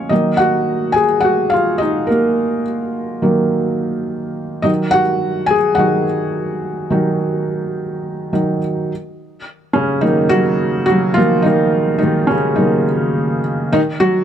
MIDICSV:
0, 0, Header, 1, 2, 480
1, 0, Start_track
1, 0, Key_signature, -6, "minor"
1, 0, Tempo, 567108
1, 90, Time_signature, 4, 2, 24, 8
1, 12054, End_track
2, 0, Start_track
2, 0, Title_t, "Felt piano"
2, 0, Program_c, 0, 0
2, 0, Control_c, 0, 64, 127
2, 0, Note_on_c, 0, 46, 47
2, 0, Note_on_c, 0, 53, 43
2, 0, Note_on_c, 0, 61, 60
2, 0, Note_on_c, 0, 63, 65
2, 0, Note_on_c, 0, 73, 81
2, 0, Note_on_c, 0, 75, 86
2, 80, Note_off_c, 0, 75, 0
2, 80, Note_on_c, 0, 75, 76
2, 87, Note_on_c, 0, 51, 47
2, 93, Note_on_c, 0, 54, 43
2, 97, Note_on_c, 0, 58, 51
2, 101, Note_off_c, 0, 63, 0
2, 101, Note_on_c, 0, 63, 59
2, 102, Control_c, 0, 64, 0
2, 106, Note_off_c, 0, 73, 0
2, 108, Note_off_c, 0, 61, 0
2, 109, Note_off_c, 0, 53, 0
2, 110, Note_off_c, 0, 46, 0
2, 251, Control_c, 0, 64, 127
2, 308, Note_off_c, 0, 75, 0
2, 314, Note_on_c, 0, 78, 96
2, 319, Note_off_c, 0, 63, 0
2, 336, Note_on_c, 0, 66, 69
2, 768, Note_off_c, 0, 78, 0
2, 775, Note_off_c, 0, 51, 0
2, 777, Note_off_c, 0, 54, 0
2, 780, Note_off_c, 0, 58, 0
2, 780, Note_off_c, 0, 66, 0
2, 781, Note_on_c, 0, 80, 83
2, 812, Note_on_c, 0, 68, 67
2, 839, Note_off_c, 0, 80, 0
2, 866, Note_off_c, 0, 68, 0
2, 1020, Note_on_c, 0, 78, 82
2, 1054, Note_on_c, 0, 66, 64
2, 1267, Note_on_c, 0, 77, 85
2, 1275, Note_off_c, 0, 66, 0
2, 1283, Note_off_c, 0, 78, 0
2, 1300, Note_on_c, 0, 65, 65
2, 1508, Note_on_c, 0, 75, 75
2, 1519, Note_off_c, 0, 65, 0
2, 1526, Note_off_c, 0, 77, 0
2, 1536, Note_on_c, 0, 63, 65
2, 1751, Note_on_c, 0, 70, 70
2, 1757, Note_off_c, 0, 63, 0
2, 1767, Note_off_c, 0, 75, 0
2, 1779, Note_on_c, 0, 58, 53
2, 2207, Note_off_c, 0, 70, 0
2, 2222, Note_off_c, 0, 58, 0
2, 2726, Note_on_c, 0, 51, 47
2, 2732, Note_on_c, 0, 54, 47
2, 2734, Note_on_c, 0, 58, 52
2, 3896, Note_off_c, 0, 51, 0
2, 3898, Note_off_c, 0, 54, 0
2, 3900, Note_off_c, 0, 58, 0
2, 3914, Note_on_c, 0, 75, 77
2, 3922, Note_on_c, 0, 51, 50
2, 3928, Note_on_c, 0, 54, 45
2, 3931, Note_on_c, 0, 63, 62
2, 3942, Control_c, 0, 64, 0
2, 3970, Note_off_c, 0, 75, 0
2, 3987, Note_off_c, 0, 63, 0
2, 4066, Control_c, 0, 64, 127
2, 4155, Note_on_c, 0, 78, 104
2, 4180, Note_on_c, 0, 66, 70
2, 4246, Note_off_c, 0, 51, 0
2, 4249, Note_off_c, 0, 54, 0
2, 4623, Note_off_c, 0, 66, 0
2, 4625, Note_on_c, 0, 80, 87
2, 4658, Note_off_c, 0, 78, 0
2, 4660, Note_on_c, 0, 68, 70
2, 4682, Note_off_c, 0, 80, 0
2, 4713, Note_off_c, 0, 68, 0
2, 4865, Note_on_c, 0, 78, 83
2, 4890, Note_on_c, 0, 51, 46
2, 4897, Note_on_c, 0, 54, 42
2, 4898, Note_on_c, 0, 63, 50
2, 4902, Note_on_c, 0, 66, 62
2, 5107, Note_off_c, 0, 51, 0
2, 5111, Note_off_c, 0, 54, 0
2, 5112, Note_off_c, 0, 63, 0
2, 5843, Note_on_c, 0, 51, 55
2, 5850, Note_on_c, 0, 54, 48
2, 5855, Note_on_c, 0, 63, 58
2, 7035, Note_off_c, 0, 51, 0
2, 7037, Note_off_c, 0, 54, 0
2, 7038, Note_off_c, 0, 63, 0
2, 7048, Note_on_c, 0, 51, 46
2, 7049, Note_on_c, 0, 54, 41
2, 7051, Note_on_c, 0, 63, 53
2, 7246, Note_off_c, 0, 78, 0
2, 7264, Note_off_c, 0, 66, 0
2, 7266, Note_off_c, 0, 51, 0
2, 7267, Note_off_c, 0, 54, 0
2, 7268, Note_off_c, 0, 63, 0
2, 7545, Control_c, 0, 64, 0
2, 7937, Control_c, 0, 64, 127
2, 8239, Note_on_c, 0, 61, 89
2, 8257, Note_on_c, 0, 49, 70
2, 8474, Note_on_c, 0, 63, 94
2, 8478, Note_off_c, 0, 49, 0
2, 8484, Note_on_c, 0, 51, 72
2, 8489, Note_on_c, 0, 54, 54
2, 8493, Note_off_c, 0, 61, 0
2, 8493, Note_on_c, 0, 58, 65
2, 8706, Note_off_c, 0, 63, 0
2, 8713, Note_on_c, 0, 66, 112
2, 8718, Note_off_c, 0, 51, 0
2, 8730, Note_off_c, 0, 54, 0
2, 8742, Note_on_c, 0, 54, 88
2, 8812, Note_off_c, 0, 58, 0
2, 9177, Note_off_c, 0, 66, 0
2, 9184, Note_off_c, 0, 54, 0
2, 9190, Note_on_c, 0, 66, 105
2, 9224, Note_on_c, 0, 54, 84
2, 9428, Note_on_c, 0, 65, 102
2, 9441, Note_off_c, 0, 54, 0
2, 9448, Note_off_c, 0, 66, 0
2, 9451, Note_on_c, 0, 51, 52
2, 9455, Note_on_c, 0, 54, 47
2, 9459, Note_on_c, 0, 58, 59
2, 9462, Note_on_c, 0, 53, 77
2, 9667, Note_off_c, 0, 51, 0
2, 9669, Note_off_c, 0, 54, 0
2, 9669, Note_on_c, 0, 63, 91
2, 9672, Note_off_c, 0, 58, 0
2, 9680, Note_off_c, 0, 53, 0
2, 9687, Note_off_c, 0, 65, 0
2, 9693, Note_on_c, 0, 51, 78
2, 9697, Note_on_c, 0, 54, 52
2, 9704, Note_on_c, 0, 58, 63
2, 10126, Note_off_c, 0, 63, 0
2, 10144, Note_on_c, 0, 63, 93
2, 10146, Note_off_c, 0, 51, 0
2, 10184, Note_on_c, 0, 51, 70
2, 10379, Note_off_c, 0, 63, 0
2, 10380, Note_off_c, 0, 54, 0
2, 10383, Note_off_c, 0, 58, 0
2, 10386, Note_on_c, 0, 61, 82
2, 10401, Note_off_c, 0, 51, 0
2, 10415, Note_on_c, 0, 49, 66
2, 10442, Note_off_c, 0, 61, 0
2, 10469, Note_off_c, 0, 49, 0
2, 10627, Note_on_c, 0, 63, 84
2, 10646, Note_on_c, 0, 51, 63
2, 10651, Note_on_c, 0, 54, 46
2, 10653, Note_on_c, 0, 58, 55
2, 10866, Note_off_c, 0, 54, 0
2, 10868, Note_off_c, 0, 58, 0
2, 11324, Note_off_c, 0, 63, 0
2, 11339, Note_off_c, 0, 51, 0
2, 11617, Note_on_c, 0, 63, 100
2, 11620, Control_c, 0, 64, 0
2, 11620, Note_on_c, 0, 51, 76
2, 11670, Note_off_c, 0, 63, 0
2, 11673, Note_off_c, 0, 51, 0
2, 11745, Control_c, 0, 64, 127
2, 11850, Note_on_c, 0, 66, 110
2, 11853, Note_on_c, 0, 54, 83
2, 12054, Note_off_c, 0, 54, 0
2, 12054, Note_off_c, 0, 66, 0
2, 12054, End_track
0, 0, End_of_file